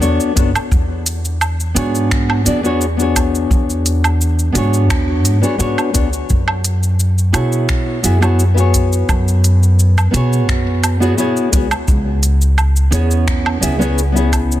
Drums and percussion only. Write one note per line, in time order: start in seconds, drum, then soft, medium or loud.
0.02 shaker soft
0.20 shaker soft
0.37 kick loud
0.37 closed hi-hat medium
0.37 shaker medium
0.56 low woodblock medium
0.56 shaker soft
0.72 kick loud
0.72 shaker soft
1.06 closed hi-hat medium
1.06 shaker medium
1.25 shaker soft
1.41 low woodblock medium
1.41 shaker soft
1.60 shaker soft
1.76 closed hi-hat medium
1.76 shaker medium
1.95 shaker soft
2.11 finger snap medium
2.11 kick loud
2.11 shaker soft
2.30 low woodblock medium
2.46 closed hi-hat medium
2.46 shaker medium
2.65 shaker soft
2.81 shaker soft
3.00 shaker soft
3.16 kick medium
3.16 closed hi-hat medium
3.16 low woodblock medium
3.16 shaker medium
3.35 shaker soft
3.51 kick loud
3.51 shaker soft
3.70 shaker soft
3.86 closed hi-hat medium
3.86 shaker medium
4.04 low woodblock medium
4.04 shaker soft
4.21 shaker soft
4.39 shaker soft
4.55 closed hi-hat medium
4.55 shaker medium
4.74 shaker soft
4.90 finger snap medium
4.90 kick loud
4.90 low woodblock medium
4.90 shaker soft
5.25 closed hi-hat medium
5.25 shaker medium
5.43 shaker soft
5.60 shaker soft
5.78 low woodblock medium
5.78 shaker soft
5.95 kick loud
5.95 closed hi-hat medium
5.95 shaker medium
6.13 shaker soft
6.30 kick loud
6.30 shaker soft
6.48 low woodblock medium
6.64 closed hi-hat medium
6.64 shaker medium
6.83 shaker soft
7.00 shaker soft
7.18 shaker soft
7.34 closed hi-hat medium
7.34 low woodblock medium
7.34 shaker medium
7.52 shaker soft
7.69 finger snap medium
7.69 kick loud
7.69 shaker soft
8.04 closed hi-hat medium
8.04 shaker medium
8.22 low woodblock medium
8.22 shaker soft
8.39 shaker soft
8.58 shaker soft
8.74 kick medium
8.74 closed hi-hat medium
8.74 shaker medium
8.93 shaker soft
9.09 kick loud
9.09 low woodblock medium
9.09 shaker soft
9.28 shaker soft
9.44 closed hi-hat medium
9.44 shaker medium
9.63 shaker soft
9.79 shaker soft
9.98 low woodblock medium
9.98 shaker soft
10.14 closed hi-hat medium
10.14 shaker medium
10.33 shaker soft
10.48 finger snap medium
10.48 kick loud
10.48 shaker soft
10.84 closed hi-hat loud
10.84 low woodblock medium
10.84 shaker medium
11.02 shaker soft
11.18 shaker soft
11.37 shaker soft
11.53 kick loud
11.53 closed hi-hat loud
11.53 shaker medium
11.71 low woodblock medium
11.71 shaker soft
11.88 kick loud
11.88 shaker soft
12.23 closed hi-hat medium
12.23 shaker medium
12.42 shaker soft
12.58 low woodblock medium
12.58 shaker soft
12.76 shaker soft
12.93 closed hi-hat medium
12.93 shaker medium
13.11 shaker soft
13.27 finger snap medium
13.27 kick loud
13.27 shaker soft
13.46 low woodblock medium
13.63 closed hi-hat loud
13.63 shaker medium
13.82 shaker soft
13.98 shaker soft
14.17 shaker soft
14.32 kick medium
14.32 closed hi-hat loud
14.32 low woodblock medium
14.32 shaker medium
14.52 shaker soft